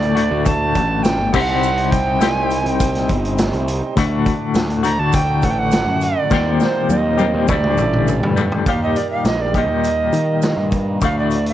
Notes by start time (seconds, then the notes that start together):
Already playing: D2 A2 D3 F#3 A3 D4 F#4 A4 D5
0.02 closed hi-hat
0.15 D2 A2 D3 A3 F#4, closed hi-hat
0.31 D2
0.45 A5, kick, closed hi-hat, maracas
0.75 A1, kick, closed hi-hat, maracas
1.03 G5, snare, closed hi-hat, maracas
1.19 G1
1.33 C2 C3 G3 C4 D#4 G4 C5 F#5, kick, crash, maracas
1.63 maracas
1.78 closed hi-hat
1.91 G5, kick, closed hi-hat, maracas
2.19 C2 C3 G3 C4 D#4 G4, snare, closed hi-hat, maracas
2.23 C5
2.33 G#5
2.44 G5
2.50 closed hi-hat, maracas
2.56 G#5
2.65 C2 G5, closed hi-hat
2.80 kick, closed hi-hat, maracas
2.95 snare, closed hi-hat
3.09 G1, kick, closed hi-hat, maracas
3.25 closed hi-hat
3.38 snare, closed hi-hat, maracas
3.53 C2, closed hi-hat
3.68 closed hi-hat, maracas
3.96 D2 A2 D3 A3 D4 F#4 D5, kick, closed hi-hat, maracas
4.26 kick, closed hi-hat, maracas
4.54 D2, snare, closed hi-hat, maracas
4.70 closed hi-hat
4.83 D2 A2 D3 A3 F#4 A#5, closed hi-hat, maracas
4.99 D2 A5
5.12 G5, kick, closed hi-hat, maracas
5.42 A1 F#5, kick, closed hi-hat, maracas
5.51 G5
5.59 F#5
5.71 snare, closed hi-hat, maracas
5.86 F#2
6.01 D5, closed hi-hat, maracas
6.30 D#2 A#2 D#3 G3 A#3 C4 D#4 G4 C5, kick, snare, maracas
6.60 C5, snare, maracas
6.89 D#2 D#5, high tom, maracas
7.18 D#2 A#2 D#3 G3 C4 G4, high tom, maracas
7.34 D#2
7.48 D2 A2 D3 G3 A3 D4 D5, kick, mid tom, maracas
7.64 mid tom
7.77 A1, mid tom, maracas
7.93 mid tom
8.08 mid tom, maracas
8.21 G2, floor tom
8.36 D2 A2 D3 G3, floor tom, maracas
8.52 floor tom
8.66 D#2 A#2 D#3 G3 A#3 D#4 G4 A#4 F5, kick, closed hi-hat, maracas
8.83 D#5
8.96 D5, closed hi-hat, maracas
9.11 F5
9.25 A#1 D#5, snare, closed hi-hat, maracas
9.41 D5
9.54 D#2 A#2 D#3 G3 G4 D#5, kick, closed hi-hat, maracas
9.69 D#2
9.84 closed hi-hat, maracas
10.13 D#3, closed hi-hat, maracas
10.42 snare, closed hi-hat, maracas
10.57 G2
10.72 kick, closed hi-hat, maracas
11.01 D2 A2 D3 F#3 A3 D4 F#4 A4 F5, kick, closed hi-hat, maracas
11.19 D5
11.31 D5, closed hi-hat, maracas
11.46 F5, closed hi-hat